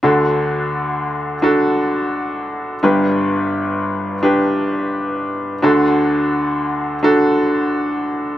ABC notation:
X:1
M:4/4
L:1/8
Q:1/4=86
K:Dmix
V:1 name="Upright piano"
[DFA]4 [DFA]4 | [DGB]4 [DGB]4 | [DFA]4 [DFA]4 |]
V:2 name="Upright piano" clef=bass
[D,,D,]8 | [G,,,G,,]8 | [D,,D,]8 |]